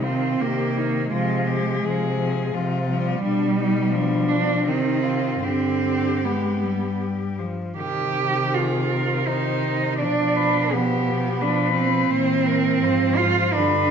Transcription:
0.00 0.31 C3 soft
0.00 0.43 C4 soft
0.00 0.43 F4 soft
0.05 0.40 D#3 soft
0.40 1.03 C3 soft
0.40 0.75 D#3 soft
0.40 1.12 A#3 medium
0.40 0.79 G4 soft
0.77 1.12 D#3 soft
0.77 1.12 D#4 soft
1.12 1.76 C3 soft
1.12 1.48 F3 soft
1.12 2.53 G#3 medium
1.12 1.49 F4 soft
1.48 1.83 F3 soft
1.48 1.86 G4 soft
1.84 2.47 C3 soft
1.84 2.19 F3 soft
1.84 2.56 G#4 medium
2.19 2.54 F3 soft
2.54 3.15 C3 soft
2.54 2.88 F3 soft
2.54 3.23 F4 medium
2.90 3.22 F3 soft
2.90 4.30 G3 medium
3.23 4.69 B2 soft
3.23 3.93 G3 soft
3.23 3.56 D4 soft
3.57 3.96 D#4 soft
3.92 4.68 F3 soft
3.92 4.69 D4 soft
4.28 4.66 D4 medium
4.67 5.43 C3 soft
4.67 5.43 D#3 soft
4.67 5.43 C4 medium
4.67 5.04 D#4 soft
5.03 5.45 F4 soft
5.44 7.53 G2 soft
5.44 6.22 D3 soft
5.44 6.26 C4 medium
5.44 7.39 G4 soft
6.25 6.65 G#3 soft
6.25 7.01 B3 soft
6.63 7.41 G3 soft
7.39 7.78 F3 soft
7.78 10.02 C3 soft
7.78 9.25 D#3 soft
7.78 8.56 G4 medium
8.54 9.28 F4 medium
8.54 8.92 G#4 soft
8.91 9.27 A#4 soft
9.26 10.04 D#3 soft
9.26 10.00 D#4 medium
9.26 9.98 C5 soft
9.99 12.11 B2 soft
9.99 10.74 F3 soft
9.99 10.74 D4 medium
9.99 10.37 D5 soft
10.36 10.74 B4 soft
10.72 11.42 F3 soft
10.72 11.43 B3 medium
10.72 11.42 G4 soft
11.41 11.74 D4 medium
11.41 12.11 B4 soft
11.45 12.11 F3 soft
11.75 13.19 C4 medium
12.10 12.84 A#2 soft
12.10 12.47 C5 medium
12.14 12.84 E3 soft
12.46 12.85 A#4 medium
12.82 13.58 G#2 medium
12.82 13.59 F3 soft
12.82 13.54 C5 medium
13.17 13.55 F4 medium
13.54 13.91 G2 soft
13.54 13.91 D3 soft
13.54 13.91 D4 medium
13.54 13.91 B4 soft

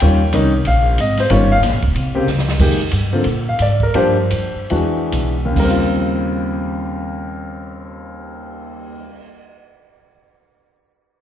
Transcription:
0.00 0.33 D#2 medium
0.00 0.19 D#3 medium
0.00 0.19 G3 medium
0.00 0.19 C#4 medium
0.00 0.20 F4 medium
0.00 0.30 G5 medium
0.00 ride medium
0.33 0.65 C2 medium
0.33 0.51 D#3 medium
0.33 0.51 G3 medium
0.33 0.51 C#4 medium
0.33 0.51 D#4 medium
0.33 hi-hat pedal medium
0.33 ride medium
0.65 0.97 A#1 medium
0.65 0.97 F5 medium
0.65 ride medium
0.98 1.30 G#1 medium
0.98 1.19 D#5 medium
0.98 hi-hat pedal medium
0.98 ride medium
1.17 1.31 C5 medium
1.17 snare soft
1.17 ride soft
1.30 1.62 G1 medium
1.30 1.48 D#3 medium
1.30 1.48 G3 medium
1.30 1.48 C#4 medium
1.30 1.48 F4 medium
1.30 1.51 C#5 medium
1.30 ride medium
1.52 1.59 F5 loud
1.63 1.73 A#1 medium
1.63 snare soft
1.63 hi-hat pedal medium
1.63 ride medium
1.73 1.84 G1 soft
1.82 1.94 D#1 medium
1.82 kick medium
1.82 ride medium
1.95 2.26 C2 medium
1.95 ride medium
2.15 2.26 C#3 medium
2.15 2.26 A#3 medium
2.15 2.26 C4 medium
2.15 2.26 G4 medium
2.28 2.59 C#2 medium
2.28 snare soft
2.28 hi-hat pedal soft
2.38 snare medium
2.48 snare medium
2.59 2.91 F2 medium
2.59 2.78 D#3 medium
2.59 2.78 G#3 soft
2.59 2.78 A#3 medium
2.59 2.78 G4 medium
2.59 kick medium
2.59 crash medium
2.91 3.25 G2 medium
2.91 hi-hat pedal medium
2.91 ride medium
3.13 3.24 D3 medium
3.13 3.24 A#3 medium
3.13 3.24 C4 medium
3.13 3.25 F4 medium
3.24 3.59 A#2 medium
3.24 ride medium
3.49 3.60 F5 medium
3.59 3.94 G#2 medium
3.59 3.82 D5 medium
3.59 hi-hat pedal soft
3.59 ride medium
3.80 3.95 A#4 medium
3.80 kick soft
3.94 4.30 G2 medium
3.94 4.15 F3 medium
3.94 4.15 A#3 medium
3.94 4.15 D4 medium
3.94 4.15 G4 medium
3.94 4.68 C5 medium
3.94 ride medium
4.31 4.53 F2 medium
4.31 hi-hat pedal medium
4.31 ride medium
4.55 muted upright bass stroke soft
4.70 5.11 E2 medium
4.70 5.33 E3 medium
4.70 5.34 G#3 soft
4.70 5.34 D4 soft
4.70 5.33 F#4 medium
4.70 ride soft
5.12 5.55 B1 medium
5.12 hi-hat pedal medium
5.12 ride medium
5.45 9.01 D#2 medium
5.51 9.07 C#3 medium
5.56 9.08 D#2 medium
5.56 9.14 G3 medium
5.56 9.11 A#4 medium
5.56 kick medium
5.56 crash medium
5.64 9.20 C4 medium
5.70 9.26 F4 medium
5.85 cymbal swell soft

